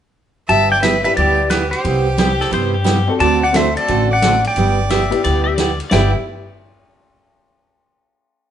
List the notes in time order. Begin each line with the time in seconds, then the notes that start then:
0.48 G1 G3 B3 E4 G4 E5 A5, ride
0.71 D5 G5
0.82 G3 B3 E4 G4 B4 E5, snare, hi-hat pedal, ride
1.02 D4 E4 G4 B4 E5, ride
1.15 D2 G3 B3 E4 G4 D5, ride
1.50 G3 B3 E4 G4 B4, snare, hi-hat pedal, ride
1.71 G4 C5, ride
1.84 C2 C3 G3 B3 E4 G4, ride
2.17 C3 G3 B3 E4 G4, snare, hi-hat pedal, ride
2.40 A4, snare
2.50 G2 C3 G3 B3 E4 G4 C5, ride
2.74 G4
2.84 C3 G3 B3 E4 G4, snare, hi-hat pedal, ride
3.08 C4 D4 F#4 A4
3.20 D2 D3 A3 C4 F#4 A4 D5 A5, ride
3.42 D5 F#5
3.52 D3 A3 C4 D4 F#4 A4 C5 E5, snare, hi-hat pedal, ride
3.77 A4 D5, ride
3.88 A1 D3 A3 C4 F#4 A4, ride
4.11 D5 F#5
4.22 D3 A3 C4 F#4 A4, snare, hi-hat pedal, ride
4.44 D5 G5, ride
4.56 G1 G3 B3 E4 G4, ride
4.90 G3 B3 E4 G4 E5, snare, hi-hat pedal, ride
5.10 B3 D4 E4 G4, ride
5.24 D2 G3 B3 E4 G4 D5, ride
5.44 E5
5.56 G3 B3 E4 G4 D5, snare, hi-hat pedal, ride
5.80 ride
5.90 G1 G3 B3 D4 E4 G4 D5 G5, snare, splash
5.94 G4